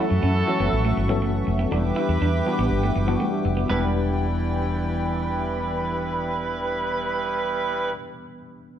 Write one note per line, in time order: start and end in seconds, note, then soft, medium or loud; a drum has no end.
0.00 0.22 E3 medium
0.00 0.22 F#3 medium
0.00 0.25 A3 medium
0.00 0.23 C#4 medium
0.00 1.43 E4 medium
0.00 0.23 F#4 medium
0.00 1.43 F#4 medium
0.00 1.43 A4 loud
0.00 1.69 A4 medium
0.00 3.65 E5 medium
0.00 1.69 F#5 medium
0.00 1.69 C#6 medium
0.10 0.20 F#2 medium
0.10 muted clean electric guitar stroke soft
0.23 0.42 F#2 loud
0.23 0.30 C#4 medium
0.47 0.88 E3 medium
0.47 0.88 F#3 medium
0.47 0.89 A3 medium
0.47 0.89 C#4 medium
0.47 0.89 F#4 medium
0.47 muted clean electric guitar stroke soft
0.60 0.69 F#1 medium
0.60 0.67 B3 medium
0.72 0.91 A1 medium
0.85 0.92 A3 medium
0.97 1.22 G1 medium
0.97 muted clean electric guitar stroke soft
1.09 1.50 E3 medium
1.09 1.50 F#3 medium
1.09 1.50 A3 medium
1.09 1.16 B3 medium
1.09 1.51 C#4 medium
1.09 1.51 A4 loud
1.22 1.41 F#1 medium
1.22 1.29 A3 medium
1.47 1.66 F1 loud
1.47 muted clean electric guitar stroke soft
1.59 1.66 B3 medium
1.71 1.90 E1 medium
1.71 2.20 E3 medium
1.71 2.21 G3 medium
1.71 2.21 B3 medium
1.71 1.79 D4 loud
1.71 2.21 D4 medium
1.71 3.42 E4 medium
1.71 2.21 G4 medium
1.71 3.42 G4 medium
1.71 3.67 B4 medium
1.71 3.42 B4 medium
1.71 3.67 G5 medium
1.71 3.67 D6 medium
1.96 2.03 E4 medium
2.08 2.18 E2 medium
2.08 muted clean electric guitar stroke soft
2.21 2.40 E2 loud
2.21 2.28 D4 medium
2.46 2.86 E3 medium
2.46 2.87 G3 medium
2.46 2.87 B3 medium
2.46 2.87 D4 medium
2.46 2.52 F#4 medium
2.46 muted clean electric guitar stroke soft
2.53 2.90 G4 loud
2.58 2.68 A1 medium
2.58 2.65 B3 medium
2.70 2.89 G1 medium
2.83 2.90 A3 medium
2.96 3.14 F#1 medium
2.96 muted clean electric guitar stroke soft
3.07 3.48 E3 medium
3.07 3.48 G3 medium
3.07 3.48 B3 medium
3.07 3.15 B3 medium
3.07 3.49 D4 medium
3.07 3.14 F#4 medium
3.14 3.52 G4 medium
3.20 3.27 A3 medium
3.20 3.43 G5 medium
3.45 3.64 F1 medium
3.45 3.68 E5 medium
3.45 muted clean electric guitar stroke soft
3.57 3.64 B3 medium
3.67 7.92 E1 medium
3.67 7.90 E3 medium
3.67 7.92 E3 medium
3.67 7.91 G3 medium
3.67 7.92 G3 medium
3.67 3.84 B3 medium
3.67 7.92 B3 medium
3.67 7.93 D4 medium
3.67 7.92 E4 medium
3.67 7.92 B4 loud
3.67 7.92 D5 medium
3.67 7.92 G5 medium
3.72 7.94 G4 medium